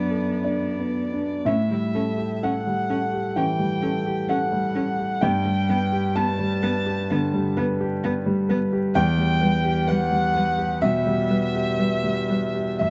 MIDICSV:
0, 0, Header, 1, 4, 480
1, 0, Start_track
1, 0, Tempo, 1016949
1, 688, Time_signature, 4, 2, 24, 8
1, 688, Tempo, 963082
1, 1168, Tempo, 934579
1, 5488, Tempo, 961538
1, 5968, Tempo, 1010101
1, 6494, End_track
2, 0, Start_track
2, 0, Title_t, "Violin"
2, 0, Program_c, 0, 40
2, 0, Note_on_c, 0, 74, 55
2, 200, Note_off_c, 0, 74, 0
2, 211, Note_on_c, 0, 74, 58
2, 688, Note_on_c, 0, 76, 74
2, 696, Note_off_c, 0, 74, 0
2, 1171, Note_on_c, 0, 78, 79
2, 1179, Note_off_c, 0, 76, 0
2, 1658, Note_on_c, 0, 79, 75
2, 1665, Note_off_c, 0, 78, 0
2, 2130, Note_off_c, 0, 79, 0
2, 2133, Note_on_c, 0, 78, 75
2, 2605, Note_on_c, 0, 79, 98
2, 2613, Note_off_c, 0, 78, 0
2, 3083, Note_on_c, 0, 81, 99
2, 3091, Note_off_c, 0, 79, 0
2, 3809, Note_off_c, 0, 81, 0
2, 4518, Note_on_c, 0, 79, 124
2, 4994, Note_on_c, 0, 78, 112
2, 5002, Note_off_c, 0, 79, 0
2, 5480, Note_on_c, 0, 76, 106
2, 5488, Note_off_c, 0, 78, 0
2, 6435, Note_off_c, 0, 76, 0
2, 6438, Note_on_c, 0, 76, 87
2, 6494, Note_off_c, 0, 76, 0
2, 6494, End_track
3, 0, Start_track
3, 0, Title_t, "Grand piano"
3, 0, Program_c, 1, 0
3, 0, Control_c, 1, 64, 127
3, 0, Note_on_c, 1, 42, 45
3, 0, Note_on_c, 1, 62, 30
3, 49, Note_on_c, 1, 69, 37
3, 145, Note_off_c, 1, 62, 0
3, 209, Note_on_c, 1, 62, 29
3, 209, Note_on_c, 1, 74, 57
3, 306, Note_off_c, 1, 69, 0
3, 371, Note_on_c, 1, 59, 33
3, 468, Note_off_c, 1, 62, 0
3, 532, Note_on_c, 1, 62, 36
3, 627, Note_off_c, 1, 59, 0
3, 668, Note_off_c, 1, 42, 0
3, 670, Note_off_c, 1, 74, 0
3, 685, Note_on_c, 1, 45, 66
3, 688, Note_off_c, 1, 62, 0
3, 689, Note_on_c, 1, 76, 77
3, 698, Control_c, 1, 64, 0
3, 792, Control_c, 1, 64, 127
3, 812, Note_on_c, 1, 55, 44
3, 932, Note_on_c, 1, 69, 52
3, 1003, Note_off_c, 1, 55, 0
3, 1047, Note_on_c, 1, 67, 47
3, 1122, Note_off_c, 1, 69, 0
3, 1148, Note_off_c, 1, 76, 0
3, 1171, Note_on_c, 1, 69, 55
3, 1174, Note_on_c, 1, 78, 79
3, 1240, Note_off_c, 1, 67, 0
3, 1297, Note_on_c, 1, 55, 41
3, 1364, Note_off_c, 1, 69, 0
3, 1413, Note_on_c, 1, 69, 52
3, 1488, Note_off_c, 1, 55, 0
3, 1535, Note_on_c, 1, 67, 45
3, 1606, Note_off_c, 1, 69, 0
3, 1631, Note_off_c, 1, 45, 0
3, 1636, Note_off_c, 1, 78, 0
3, 1651, Note_on_c, 1, 52, 51
3, 1651, Note_on_c, 1, 79, 78
3, 1726, Note_off_c, 1, 67, 0
3, 1771, Note_on_c, 1, 55, 46
3, 1844, Note_off_c, 1, 52, 0
3, 1891, Note_on_c, 1, 69, 54
3, 1963, Note_off_c, 1, 55, 0
3, 2011, Note_on_c, 1, 67, 58
3, 2082, Note_off_c, 1, 69, 0
3, 2109, Note_off_c, 1, 79, 0
3, 2130, Note_on_c, 1, 78, 83
3, 2131, Note_on_c, 1, 69, 51
3, 2202, Note_off_c, 1, 67, 0
3, 2247, Note_on_c, 1, 55, 55
3, 2321, Note_off_c, 1, 69, 0
3, 2369, Note_on_c, 1, 69, 52
3, 2438, Note_off_c, 1, 55, 0
3, 2488, Note_on_c, 1, 67, 47
3, 2559, Note_off_c, 1, 69, 0
3, 2586, Note_off_c, 1, 78, 0
3, 2602, Note_on_c, 1, 79, 101
3, 2607, Note_off_c, 1, 67, 0
3, 2609, Note_on_c, 1, 43, 78
3, 2616, Control_c, 1, 64, 0
3, 2692, Control_c, 1, 64, 127
3, 2726, Note_on_c, 1, 55, 55
3, 2848, Note_on_c, 1, 71, 62
3, 2918, Note_off_c, 1, 55, 0
3, 2966, Note_on_c, 1, 67, 63
3, 3040, Note_off_c, 1, 71, 0
3, 3064, Note_off_c, 1, 79, 0
3, 3086, Note_on_c, 1, 81, 100
3, 3088, Note_on_c, 1, 71, 66
3, 3159, Note_off_c, 1, 67, 0
3, 3207, Note_on_c, 1, 55, 61
3, 3281, Note_off_c, 1, 71, 0
3, 3328, Note_on_c, 1, 71, 68
3, 3401, Note_off_c, 1, 55, 0
3, 3450, Note_on_c, 1, 67, 57
3, 3522, Note_off_c, 1, 71, 0
3, 3551, Note_off_c, 1, 43, 0
3, 3575, Note_on_c, 1, 50, 62
3, 3643, Note_off_c, 1, 67, 0
3, 3694, Note_on_c, 1, 55, 59
3, 3765, Note_off_c, 1, 50, 0
3, 3790, Note_off_c, 1, 81, 0
3, 3813, Note_on_c, 1, 71, 73
3, 3884, Note_off_c, 1, 55, 0
3, 3934, Note_on_c, 1, 67, 73
3, 4003, Note_off_c, 1, 71, 0
3, 4057, Note_on_c, 1, 71, 57
3, 4122, Note_off_c, 1, 67, 0
3, 4168, Note_on_c, 1, 55, 71
3, 4243, Note_off_c, 1, 71, 0
3, 4285, Note_on_c, 1, 71, 72
3, 4357, Note_off_c, 1, 55, 0
3, 4407, Note_on_c, 1, 67, 64
3, 4476, Note_off_c, 1, 71, 0
3, 4523, Note_on_c, 1, 40, 96
3, 4523, Note_on_c, 1, 79, 127
3, 4525, Note_off_c, 1, 67, 0
3, 4533, Control_c, 1, 64, 0
3, 4628, Control_c, 1, 64, 127
3, 4639, Note_on_c, 1, 55, 65
3, 4757, Note_on_c, 1, 71, 65
3, 4832, Note_off_c, 1, 55, 0
3, 4876, Note_on_c, 1, 67, 76
3, 4951, Note_off_c, 1, 71, 0
3, 4981, Note_off_c, 1, 79, 0
3, 4995, Note_on_c, 1, 71, 73
3, 5002, Note_on_c, 1, 78, 109
3, 5071, Note_off_c, 1, 67, 0
3, 5118, Note_on_c, 1, 55, 62
3, 5191, Note_off_c, 1, 71, 0
3, 5236, Note_on_c, 1, 71, 71
3, 5313, Note_off_c, 1, 55, 0
3, 5360, Note_on_c, 1, 67, 61
3, 5433, Note_off_c, 1, 71, 0
3, 5464, Note_off_c, 1, 40, 0
3, 5464, Note_off_c, 1, 78, 0
3, 5481, Note_on_c, 1, 76, 109
3, 5484, Note_on_c, 1, 47, 63
3, 5554, Note_off_c, 1, 67, 0
3, 5604, Note_on_c, 1, 55, 60
3, 5674, Note_off_c, 1, 47, 0
3, 5723, Note_on_c, 1, 71, 65
3, 5795, Note_off_c, 1, 55, 0
3, 5847, Note_on_c, 1, 67, 57
3, 5917, Note_off_c, 1, 71, 0
3, 5967, Note_on_c, 1, 71, 48
3, 6037, Note_off_c, 1, 67, 0
3, 6084, Note_on_c, 1, 55, 49
3, 6155, Note_off_c, 1, 71, 0
3, 6208, Note_on_c, 1, 71, 49
3, 6275, Note_off_c, 1, 55, 0
3, 6327, Note_on_c, 1, 67, 51
3, 6399, Note_off_c, 1, 71, 0
3, 6424, Note_off_c, 1, 76, 0
3, 6443, Note_on_c, 1, 76, 85
3, 6447, Note_off_c, 1, 67, 0
3, 6451, Note_on_c, 1, 42, 63
3, 6455, Control_c, 1, 64, 0
3, 6494, Note_off_c, 1, 42, 0
3, 6494, Note_off_c, 1, 76, 0
3, 6494, End_track
4, 0, Start_track
4, 0, Title_t, "Cello"
4, 0, Program_c, 2, 42
4, 0, Note_on_c, 2, 59, 44
4, 592, Note_off_c, 2, 59, 0
4, 691, Note_on_c, 2, 61, 56
4, 731, Note_off_c, 2, 61, 0
4, 933, Note_on_c, 2, 61, 48
4, 973, Note_off_c, 2, 61, 0
4, 1175, Note_on_c, 2, 61, 52
4, 1216, Note_off_c, 2, 61, 0
4, 1413, Note_on_c, 2, 61, 49
4, 1454, Note_off_c, 2, 61, 0
4, 1653, Note_on_c, 2, 61, 49
4, 1694, Note_off_c, 2, 61, 0
4, 1887, Note_on_c, 2, 61, 50
4, 1928, Note_off_c, 2, 61, 0
4, 2127, Note_on_c, 2, 61, 56
4, 2168, Note_off_c, 2, 61, 0
4, 2364, Note_on_c, 2, 61, 56
4, 2405, Note_off_c, 2, 61, 0
4, 2608, Note_on_c, 2, 59, 71
4, 2649, Note_off_c, 2, 59, 0
4, 2848, Note_on_c, 2, 59, 65
4, 2889, Note_off_c, 2, 59, 0
4, 3091, Note_on_c, 2, 59, 67
4, 3132, Note_off_c, 2, 59, 0
4, 3329, Note_on_c, 2, 59, 79
4, 3370, Note_off_c, 2, 59, 0
4, 3574, Note_on_c, 2, 59, 76
4, 3616, Note_off_c, 2, 59, 0
4, 3812, Note_on_c, 2, 59, 73
4, 3854, Note_off_c, 2, 59, 0
4, 4054, Note_on_c, 2, 59, 78
4, 4095, Note_off_c, 2, 59, 0
4, 4290, Note_on_c, 2, 59, 77
4, 4331, Note_off_c, 2, 59, 0
4, 4529, Note_on_c, 2, 55, 79
4, 4570, Note_off_c, 2, 55, 0
4, 4765, Note_on_c, 2, 55, 76
4, 4807, Note_off_c, 2, 55, 0
4, 5011, Note_on_c, 2, 55, 82
4, 5052, Note_off_c, 2, 55, 0
4, 5248, Note_on_c, 2, 55, 76
4, 5289, Note_off_c, 2, 55, 0
4, 5481, Note_on_c, 2, 55, 65
4, 5521, Note_off_c, 2, 55, 0
4, 5717, Note_on_c, 2, 55, 61
4, 5756, Note_off_c, 2, 55, 0
4, 5964, Note_on_c, 2, 55, 59
4, 6002, Note_off_c, 2, 55, 0
4, 6205, Note_on_c, 2, 55, 48
4, 6243, Note_off_c, 2, 55, 0
4, 6446, Note_on_c, 2, 54, 54
4, 6484, Note_off_c, 2, 54, 0
4, 6494, End_track
0, 0, End_of_file